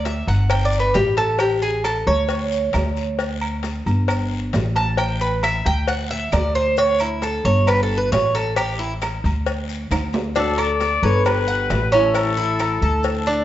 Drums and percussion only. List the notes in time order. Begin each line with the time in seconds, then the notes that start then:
0.06 cowbell, low timbale, short guiro, maracas
0.28 low agogo, short guiro, maracas
0.50 cowbell, low agogo, long guiro, claves, maracas
0.73 maracas
0.94 cowbell, low timbale, low agogo, short guiro, maracas
1.17 cowbell, low agogo, short guiro, maracas
1.39 cowbell, low agogo, long guiro, claves, maracas
1.62 maracas
1.84 cowbell, low timbale, low agogo, short guiro, claves, maracas
2.07 low agogo, short guiro, maracas
2.28 cowbell, long guiro, maracas
2.52 maracas
2.73 cowbell, low timbale, low agogo, short guiro, claves, maracas
2.97 short guiro, maracas
3.19 cowbell, low agogo, long guiro, maracas
3.42 low agogo, claves
3.63 cowbell, low timbale, short guiro, maracas
3.86 low agogo, short guiro, maracas
4.08 cowbell, low agogo, long guiro, claves, maracas
4.53 cowbell, low timbale, low agogo, short guiro, maracas
4.76 cowbell, low agogo, short guiro, maracas
4.98 cowbell, low agogo, long guiro, claves, maracas
5.21 maracas
5.43 cowbell, low timbale, low agogo, short guiro, claves, maracas
5.66 low agogo, short guiro, maracas
5.87 cowbell, long guiro, maracas
6.10 maracas
6.32 cowbell, low timbale, low agogo, short guiro, claves, maracas
6.55 short guiro, maracas
6.77 cowbell, low agogo, long guiro, maracas
7.00 low agogo, claves, maracas
7.22 cowbell, low timbale, short guiro, maracas
7.45 low agogo, short guiro, maracas
7.67 cowbell, low agogo, long guiro, claves, maracas
8.12 cowbell, low timbale, low agogo, short guiro, maracas
8.35 cowbell, low agogo, short guiro, maracas
8.56 cowbell, low agogo, long guiro, claves, maracas
9.02 cowbell, low timbale, low agogo, short guiro, claves, maracas
9.25 low agogo, short guiro, maracas
9.46 cowbell, long guiro, maracas
9.69 maracas
9.91 cowbell, high timbale, low agogo, short guiro, claves, maracas
10.13 low timbale, short guiro, maracas
10.35 cowbell, low agogo, long guiro, maracas
10.58 low agogo, claves
10.80 cowbell, low timbale, short guiro, maracas
11.03 low agogo, short guiro, maracas
11.25 cowbell, low agogo, long guiro, claves, maracas
11.48 maracas
11.70 cowbell, low timbale, low agogo, short guiro, maracas
11.92 cowbell, low agogo, short guiro, maracas
12.14 cowbell, low agogo, long guiro, claves, maracas
12.37 maracas
12.59 cowbell, low timbale, low agogo, short guiro, claves, maracas
12.82 low agogo, short guiro, maracas
13.03 cowbell, long guiro, maracas
13.26 maracas